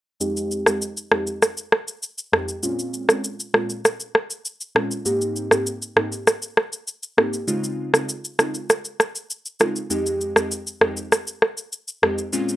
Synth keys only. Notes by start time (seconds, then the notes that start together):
0.20 F2 G#3 C4 D#4 G4
0.67 F2 G#3 C4 D#4 G4
1.11 F2 G#3 C4 D#4 G4
2.32 F2 G#3 C4 D#4 G4
2.63 A#2 G#3 C4 C#4 F4
3.09 A#2 G#3 C4 C#4 F4
3.54 A#2 G#3 C4 C#4 F4
4.75 A#2 G#3 C4 C#4 F4
5.05 G#2 A#3 C4 D#4 G4
5.51 G#2 A#3 C4 D#4 G4
5.96 G#2 A#3 C4 D#4 G4
7.17 G#2 A#3 C4 D#4 G4
7.48 C#3 G#3 C4 D#4 F4
7.94 C#3 G#3 C4 D#4 F4
8.39 C#3 G#3 C4 D#4 F4
9.60 C#3 G#3 C4 D#4 F4
9.90 F2 G#3 C4 D#4 G4
10.36 F2 G#3 C4 D#4 G4
10.81 F2 G#3 C4 D#4 G4
12.02 F2 G#3 C4 D#4 G4
12.33 A#2 G#3 C4 C#4 F4